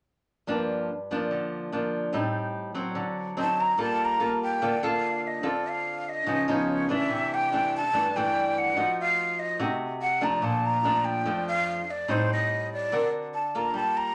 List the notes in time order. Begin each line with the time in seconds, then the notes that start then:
0.47 G2 F3 A#3 D4
1.11 F3 A#3 D4
1.31 D3
1.72 F3 A#3 D4
2.13 A2 G3 C4 D#4
2.75 F#3 C4
2.95 D3
3.37 F#3 C4 D#4
3.41 A5
3.60 A#5
3.77 G3 A#3 F4 A4
3.83 A5
4.05 A#5
4.20 A#3 F4 A4
4.43 G5
4.62 D3 A#3 F4 A4
4.83 A#3 F4 A4 F5
5.27 D#5
5.43 D3 C4 F4 A4
5.49 D5
5.69 F5
6.09 D#5
6.26 C#3 F3 B3 D#4
6.48 F3 B3 D#4 C#5
6.89 E3 A3 D4 E5
7.10 C3
7.34 G5
7.52 E3 A3 D4
7.77 A5
7.93 G2 E3 A3 D4
8.16 E3 A3 D4 G5
8.58 F#5
8.76 F3 A3 D#4 F#4
9.00 F5
9.39 D#5
9.59 C3 A3 D#4 F#4
10.02 F#5
10.21 F3 A3 D4 A#5
10.42 A#2 A5
10.66 A#5
10.84 F3 A3 D4
11.05 G5
11.25 F2 F3 A3 D4
11.48 F5
11.90 D5
12.08 A2 G3 C4 D#4 C5
12.33 D#5
12.73 D5
12.92 D3 C4 F#4 A#4
13.34 A5
13.55 A#3 F4 A4 A#5
13.74 G3 A5
13.97 A#5